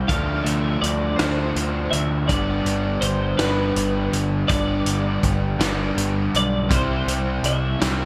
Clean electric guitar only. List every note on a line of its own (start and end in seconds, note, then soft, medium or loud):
0.08 0.43 F5 loud
0.44 0.81 E5 medium
0.82 1.20 D5 medium
1.16 1.87 C5 medium
1.91 2.27 E5 medium
2.28 2.98 D5 medium
3.01 3.36 C5 medium
3.37 4.08 B4 medium
4.48 5.28 D5 loud
6.36 6.73 D5 medium
6.73 7.45 C5 medium
7.46 8.05 E5 medium